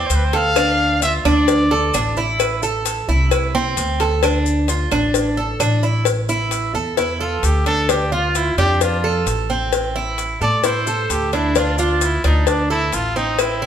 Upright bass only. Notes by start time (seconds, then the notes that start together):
0.10 D2
1.25 D2
1.94 A1
3.08 C2
3.77 D2
4.91 A1
5.60 A1
6.74 E2
7.43 D2
8.57 F2
9.26 A1
10.41 A2
11.10 D2
12.24 D2
12.93 A1